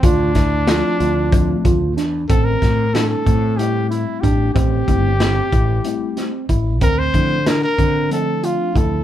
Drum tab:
HH |xxxxxxx|xxxxxxx|xxxxxxx|xxxxxxx|
SD |-oo---o|-oo----|--o--o-|--o----|
BD |oo--oo-|oo-o--o|oo-o--o|oo-o--o|